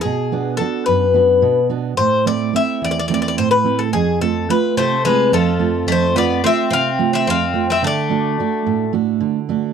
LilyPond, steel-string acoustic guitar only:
\new Staff \with { instrumentName = "Steel-string acoustic guitar" } { \time 7/8 \tempo 4 = 108 b,8 <b d' fis'>8 <b d' fis'>8 fis,8 <b d' fis'>8 b,8 <b d' fis'>8 | a,8 <a c' e'>8 <a c' e'>8 e,8 <a c' e'>8 a,8 <a c' e'>8 | f,8 <a c' f'>8 <a c' f'>8 c8 <a c' f'>8 f,8 <a c' f'>8 | f,8 <a c' f'>8 <a c' f'>8 c8 <a c' f'>8 f,8 <a c' f'>8 |
d8 <a d' fis'>8 <a d' fis'>8 a,8 <a d' fis'>8 d8 <a d' fis'>8 | }